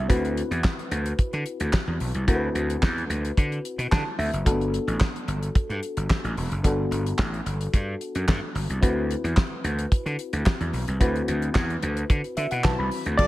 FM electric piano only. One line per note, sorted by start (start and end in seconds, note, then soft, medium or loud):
0.08 2.23 C4 medium
0.08 2.24 E4 medium
0.08 2.24 F#4 medium
0.08 2.24 B4 medium
2.27 4.42 C4 medium
2.27 4.42 E4 medium
2.27 4.42 F#4 medium
2.27 2.35 A#4 medium
2.35 4.46 B4 medium
3.91 4.17 A5 medium
4.19 4.44 E5 medium
4.45 4.52 A3 medium
4.45 6.60 D4 medium
4.45 6.60 F#4 medium
4.45 6.60 A4 medium
4.51 6.62 B3 medium
6.63 8.78 B3 medium
6.63 8.78 D4 medium
6.63 8.79 F#4 medium
6.63 8.79 A4 medium
8.81 10.96 C4 medium
8.81 10.96 E4 medium
8.81 10.97 F#4 medium
8.81 10.97 B4 medium
11.00 12.61 C4 medium
11.00 12.61 E4 medium
11.00 12.61 F#4 medium
11.00 12.61 B4 medium
12.37 12.50 E5 medium
12.51 12.63 F#5 medium
12.64 13.19 C4 medium
12.64 13.19 E4 soft
12.64 13.18 F#4 soft
12.64 13.19 B4 medium
12.64 12.78 A5 medium
12.79 13.16 B5 medium
13.18 13.25 A#3 medium
13.18 13.27 D4 medium
13.18 13.27 F#4 medium
13.18 13.27 A4 medium